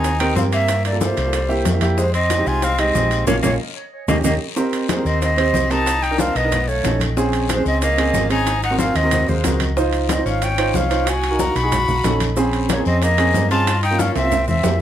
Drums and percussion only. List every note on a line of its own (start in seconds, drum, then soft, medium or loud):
0.04 high bongo medium
0.04 high conga soft
0.04 high timbale medium
0.04 long guiro medium
0.04 maracas medium
0.20 high conga soft
0.20 high timbale medium
0.20 maracas soft
0.36 high bongo medium
0.36 low bongo medium
0.36 high conga medium
0.36 low timbale medium
0.36 short guiro medium
0.36 maracas medium
0.52 high conga soft
0.52 high timbale medium
0.52 short guiro medium
0.52 maracas soft
0.68 high bongo medium
0.68 high conga soft
0.68 high timbale medium
0.68 long guiro medium
0.68 maracas medium
0.85 high bongo soft
0.85 high conga soft
0.85 high timbale medium
0.85 maracas soft
1.01 high bongo medium
1.01 high conga medium
1.01 low timbale medium
1.01 short guiro medium
1.01 maracas medium
1.17 high bongo soft
1.17 high timbale medium
1.17 short guiro medium
1.17 maracas soft
1.33 high bongo medium
1.33 high conga soft
1.33 high timbale medium
1.33 long guiro medium
1.33 maracas medium
1.49 high bongo soft
1.49 high conga soft
1.49 maracas soft
1.65 high bongo medium
1.65 low bongo medium
1.65 high conga medium
1.65 high timbale medium
1.65 low timbale medium
1.65 short guiro medium
1.65 maracas medium
1.81 high conga medium
1.81 high timbale medium
1.81 short guiro medium
1.81 maracas soft
1.98 high bongo medium
1.98 long guiro medium
1.98 maracas medium
2.14 high conga soft
2.14 high timbale medium
2.14 maracas soft
2.30 high bongo medium
2.30 high conga medium
2.30 high timbale medium
2.30 low timbale medium
2.30 short guiro medium
2.30 maracas medium
2.46 high conga soft
2.46 short guiro medium
2.46 maracas soft
2.62 high bongo medium
2.62 high conga soft
2.62 high timbale medium
2.62 long guiro medium
2.62 maracas medium
2.79 high conga soft
2.79 high timbale medium
2.79 maracas soft
2.95 high bongo medium
2.95 low bongo medium
2.95 high conga medium
2.95 low timbale medium
2.95 short guiro medium
2.95 maracas medium
3.11 high conga soft
3.11 high timbale medium
3.11 short guiro medium
3.11 maracas soft
3.27 low bongo loud
3.27 low conga loud
3.27 high timbale loud
3.27 long guiro medium
3.27 maracas loud
3.43 low bongo medium
3.43 low conga medium
3.43 high timbale medium
3.43 long guiro medium
3.43 maracas medium
4.08 low bongo medium
4.08 low conga loud
4.08 high timbale medium
4.08 long guiro loud
4.08 maracas medium
4.24 low bongo medium
4.24 low conga medium
4.24 high timbale medium
4.24 long guiro loud
4.24 maracas loud
4.57 high bongo medium
4.57 high conga soft
4.57 long guiro medium
4.57 maracas medium
4.73 high conga soft
4.73 high timbale medium
4.73 maracas soft
4.89 high bongo medium
4.89 high conga loud
4.89 high timbale medium
4.89 low timbale medium
4.89 short guiro medium
4.89 maracas medium
5.06 short guiro medium
5.06 maracas soft
5.22 high bongo medium
5.22 high conga soft
5.22 high timbale medium
5.22 long guiro medium
5.22 maracas medium
5.38 high conga soft
5.38 high timbale medium
5.38 maracas soft
5.53 high bongo medium
5.53 low bongo medium
5.53 high conga medium
5.53 low timbale medium
5.53 short guiro medium
5.53 maracas medium
5.71 high conga soft
5.71 high timbale medium
5.71 short guiro medium
5.71 maracas soft
5.86 high bongo medium
5.86 high conga soft
5.86 high timbale medium
5.86 long guiro medium
5.86 maracas medium
6.03 high bongo soft
6.03 high conga soft
6.03 high timbale medium
6.03 maracas soft
6.18 high bongo medium
6.18 high conga medium
6.18 low timbale medium
6.18 short guiro medium
6.18 maracas medium
6.35 high bongo soft
6.35 high timbale medium
6.35 short guiro medium
6.35 maracas soft
6.52 high bongo medium
6.52 high conga soft
6.52 low conga medium
6.52 high timbale medium
6.52 long guiro medium
6.52 maracas medium
6.68 high bongo soft
6.68 high conga soft
6.68 maracas soft
6.84 high bongo medium
6.84 low bongo medium
6.84 high conga medium
6.84 high timbale medium
6.84 low timbale medium
6.84 short guiro medium
6.84 maracas medium
7.00 high conga medium
7.00 high timbale medium
7.00 short guiro medium
7.00 maracas soft
7.16 high bongo medium
7.16 high conga soft
7.16 long guiro medium
7.16 maracas medium
7.33 high conga soft
7.33 high timbale medium
7.33 maracas soft
7.49 high bongo medium
7.49 high conga loud
7.49 high timbale medium
7.49 low timbale medium
7.49 short guiro medium
7.49 maracas medium
7.65 high conga soft
7.65 short guiro medium
7.65 maracas soft
7.81 high bongo medium
7.81 high conga soft
7.81 high timbale medium
7.81 long guiro medium
7.81 maracas medium
7.98 high conga soft
7.98 high timbale loud
7.98 maracas soft
8.14 high bongo medium
8.14 low bongo medium
8.14 high conga medium
8.14 low timbale medium
8.14 short guiro medium
8.14 maracas medium
8.30 high timbale medium
8.30 short guiro medium
8.30 maracas soft
8.46 high bongo medium
8.46 high conga soft
8.46 high timbale medium
8.46 long guiro medium
8.46 maracas medium
8.63 high bongo soft
8.63 high conga soft
8.63 high timbale medium
8.63 maracas soft
8.79 high bongo medium
8.79 high conga medium
8.79 low timbale medium
8.79 short guiro medium
8.79 maracas medium
8.95 high bongo soft
8.95 high conga soft
8.95 high timbale medium
8.95 short guiro medium
8.95 maracas soft
9.11 high bongo medium
9.11 high conga soft
9.11 low conga medium
9.11 high timbale medium
9.11 long guiro medium
9.11 maracas medium
9.28 high bongo soft
9.28 high conga soft
9.28 low conga medium
9.28 maracas soft
9.44 high bongo medium
9.44 low bongo medium
9.44 high conga medium
9.44 high timbale medium
9.44 low timbale medium
9.44 short guiro medium
9.44 maracas medium
9.60 high conga medium
9.60 high timbale medium
9.60 short guiro medium
9.60 maracas soft
9.77 high bongo medium
9.77 long guiro medium
9.77 maracas medium
9.93 high conga soft
9.93 high timbale medium
9.93 maracas soft
10.09 high bongo medium
10.09 high conga loud
10.09 high timbale medium
10.09 low timbale medium
10.09 short guiro medium
10.09 maracas medium
10.25 high conga soft
10.25 short guiro medium
10.25 maracas soft
10.42 high bongo medium
10.42 high conga soft
10.42 high timbale medium
10.42 long guiro medium
10.42 maracas medium
10.58 high conga soft
10.58 high timbale loud
10.58 maracas soft
10.74 high bongo medium
10.74 low bongo medium
10.74 high conga medium
10.74 low timbale medium
10.74 short guiro medium
10.74 maracas medium
10.91 high timbale medium
10.91 short guiro medium
10.91 maracas soft
11.07 high bongo medium
11.07 high conga soft
11.07 high timbale medium
11.07 long guiro medium
11.07 maracas medium
11.23 high bongo soft
11.23 high conga soft
11.23 high timbale medium
11.23 maracas soft
11.39 high bongo medium
11.39 high conga loud
11.39 low timbale medium
11.39 short guiro medium
11.39 maracas medium
11.56 high bongo soft
11.56 high conga soft
11.56 high timbale medium
11.56 short guiro medium
11.56 maracas soft
11.72 high bongo medium
11.72 high conga soft
11.72 low conga medium
11.72 high timbale medium
11.72 long guiro medium
11.72 maracas medium
11.88 high bongo soft
11.88 high conga soft
11.88 low conga medium
11.88 maracas soft
12.04 high bongo medium
12.04 low bongo medium
12.04 high conga medium
12.04 high timbale medium
12.04 low timbale medium
12.04 short guiro medium
12.04 maracas medium
12.20 high conga medium
12.20 high timbale medium
12.20 short guiro medium
12.20 maracas soft
12.36 high bongo medium
12.36 high conga soft
12.36 long guiro medium
12.36 maracas medium
12.53 high conga soft
12.53 high timbale medium
12.53 maracas soft
12.69 high bongo medium
12.69 high conga loud
12.69 high timbale medium
12.69 low timbale medium
12.69 short guiro medium
12.69 maracas medium
12.85 high conga soft
12.85 short guiro medium
12.85 maracas soft
13.02 high bongo medium
13.02 high timbale medium
13.02 long guiro medium
13.02 maracas medium
13.18 high conga soft
13.18 high timbale medium
13.18 maracas soft
13.34 high bongo medium
13.34 low bongo medium
13.34 high conga medium
13.34 low timbale medium
13.34 short guiro medium
13.34 maracas medium
13.51 high conga soft
13.51 high timbale medium
13.51 short guiro medium
13.51 maracas soft
13.67 high bongo medium
13.67 high conga soft
13.67 high timbale loud
13.67 long guiro medium
13.67 maracas medium
13.83 high bongo soft
13.83 high conga soft
13.83 high timbale medium
13.83 maracas soft
13.99 high bongo medium
13.99 high conga loud
13.99 low timbale medium
13.99 short guiro medium
13.99 maracas medium
14.16 high bongo soft
14.16 high conga soft
14.16 high timbale medium
14.16 short guiro medium
14.16 maracas soft
14.32 high bongo medium
14.32 high conga soft
14.32 low conga medium
14.32 high timbale medium
14.32 long guiro medium
14.32 maracas medium
14.48 high bongo soft
14.48 high conga soft
14.48 low conga medium
14.48 maracas soft
14.64 high bongo medium
14.64 low bongo medium
14.64 high conga medium
14.64 low timbale loud
14.64 short guiro medium
14.64 maracas medium